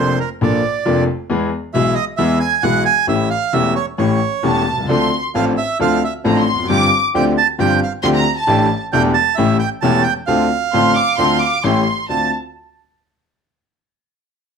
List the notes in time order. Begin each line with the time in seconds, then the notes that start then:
Already playing: F1 F2 F3 A#3 D4 A4 C5
0.20 A#4
0.41 A#1 A#2 F3 A#3 D4 A4 D5
0.85 F1 F2 F3 A#3 D4 A4
1.30 E2 E3 G#3 B3 G#4
1.74 B1 B2 E3 G#3 B3 G#4 E5
1.94 D#5
2.17 E2 E3 G#3 B3 G#4 E5
2.40 G#5
2.63 B1 B2 E3 G#3 B3 G#4 F#5
2.85 G#5
3.07 A1 A2 E3 A3 C#4 G4 E5
3.30 F5
3.53 E1 E2 E3 A3 C#4 G4 E5
3.76 C#5
3.98 A1 A2 E3 A3 C#4 G4 C#5
4.43 E1 E2 E3 A3 C#4 G4 A5
4.73 B1
4.79 C2
4.84 C#2
4.89 D2 D3 F3 C4 D4 F4 A4 C6
5.34 A1 A2 F3 C4 D4 F4 A4 F5
5.57 E5
5.79 D2 D3 F3 C4 D4 F4 A4 F5
6.04 E5
6.24 A1 A2 F3 C4 D4 F4 A4 A#5
6.37 C6
6.53 E2
6.59 F2
6.64 F#2
6.69 G1 G2 F3 C4 D4 F4 G4 D6
7.14 D2 D3 F3 C4 D4 F4 G4 G5
7.38 A5
7.58 G1 G2 F3 C4 D4 F4 G4 G5
7.83 F5
8.03 D2 D3 F3 C4 D4 F4 G4 C6
8.14 A#5
8.37 A5
8.47 A1 A2 E3 A3 D4 G4
8.92 E1 E2 E3 A3 D4 G4 G5
9.14 A5
9.35 A1 A2 E3 A3 C#4 G4 E5
9.59 G5
9.81 E1 E2 E3 A3 C#4 G4 A5
10.03 G5
10.27 D2 D3 A3 C4 D4 F4 F5
10.73 A1 A2 D3 A3 C4 D4 F4 C6
10.95 D6
11.18 D2 D3 A3 C4 D4 F4 C6
11.41 D6
11.63 A1 A2 E3 A3 C#4 G4 C6
12.08 D2 C4 D4 F4 A5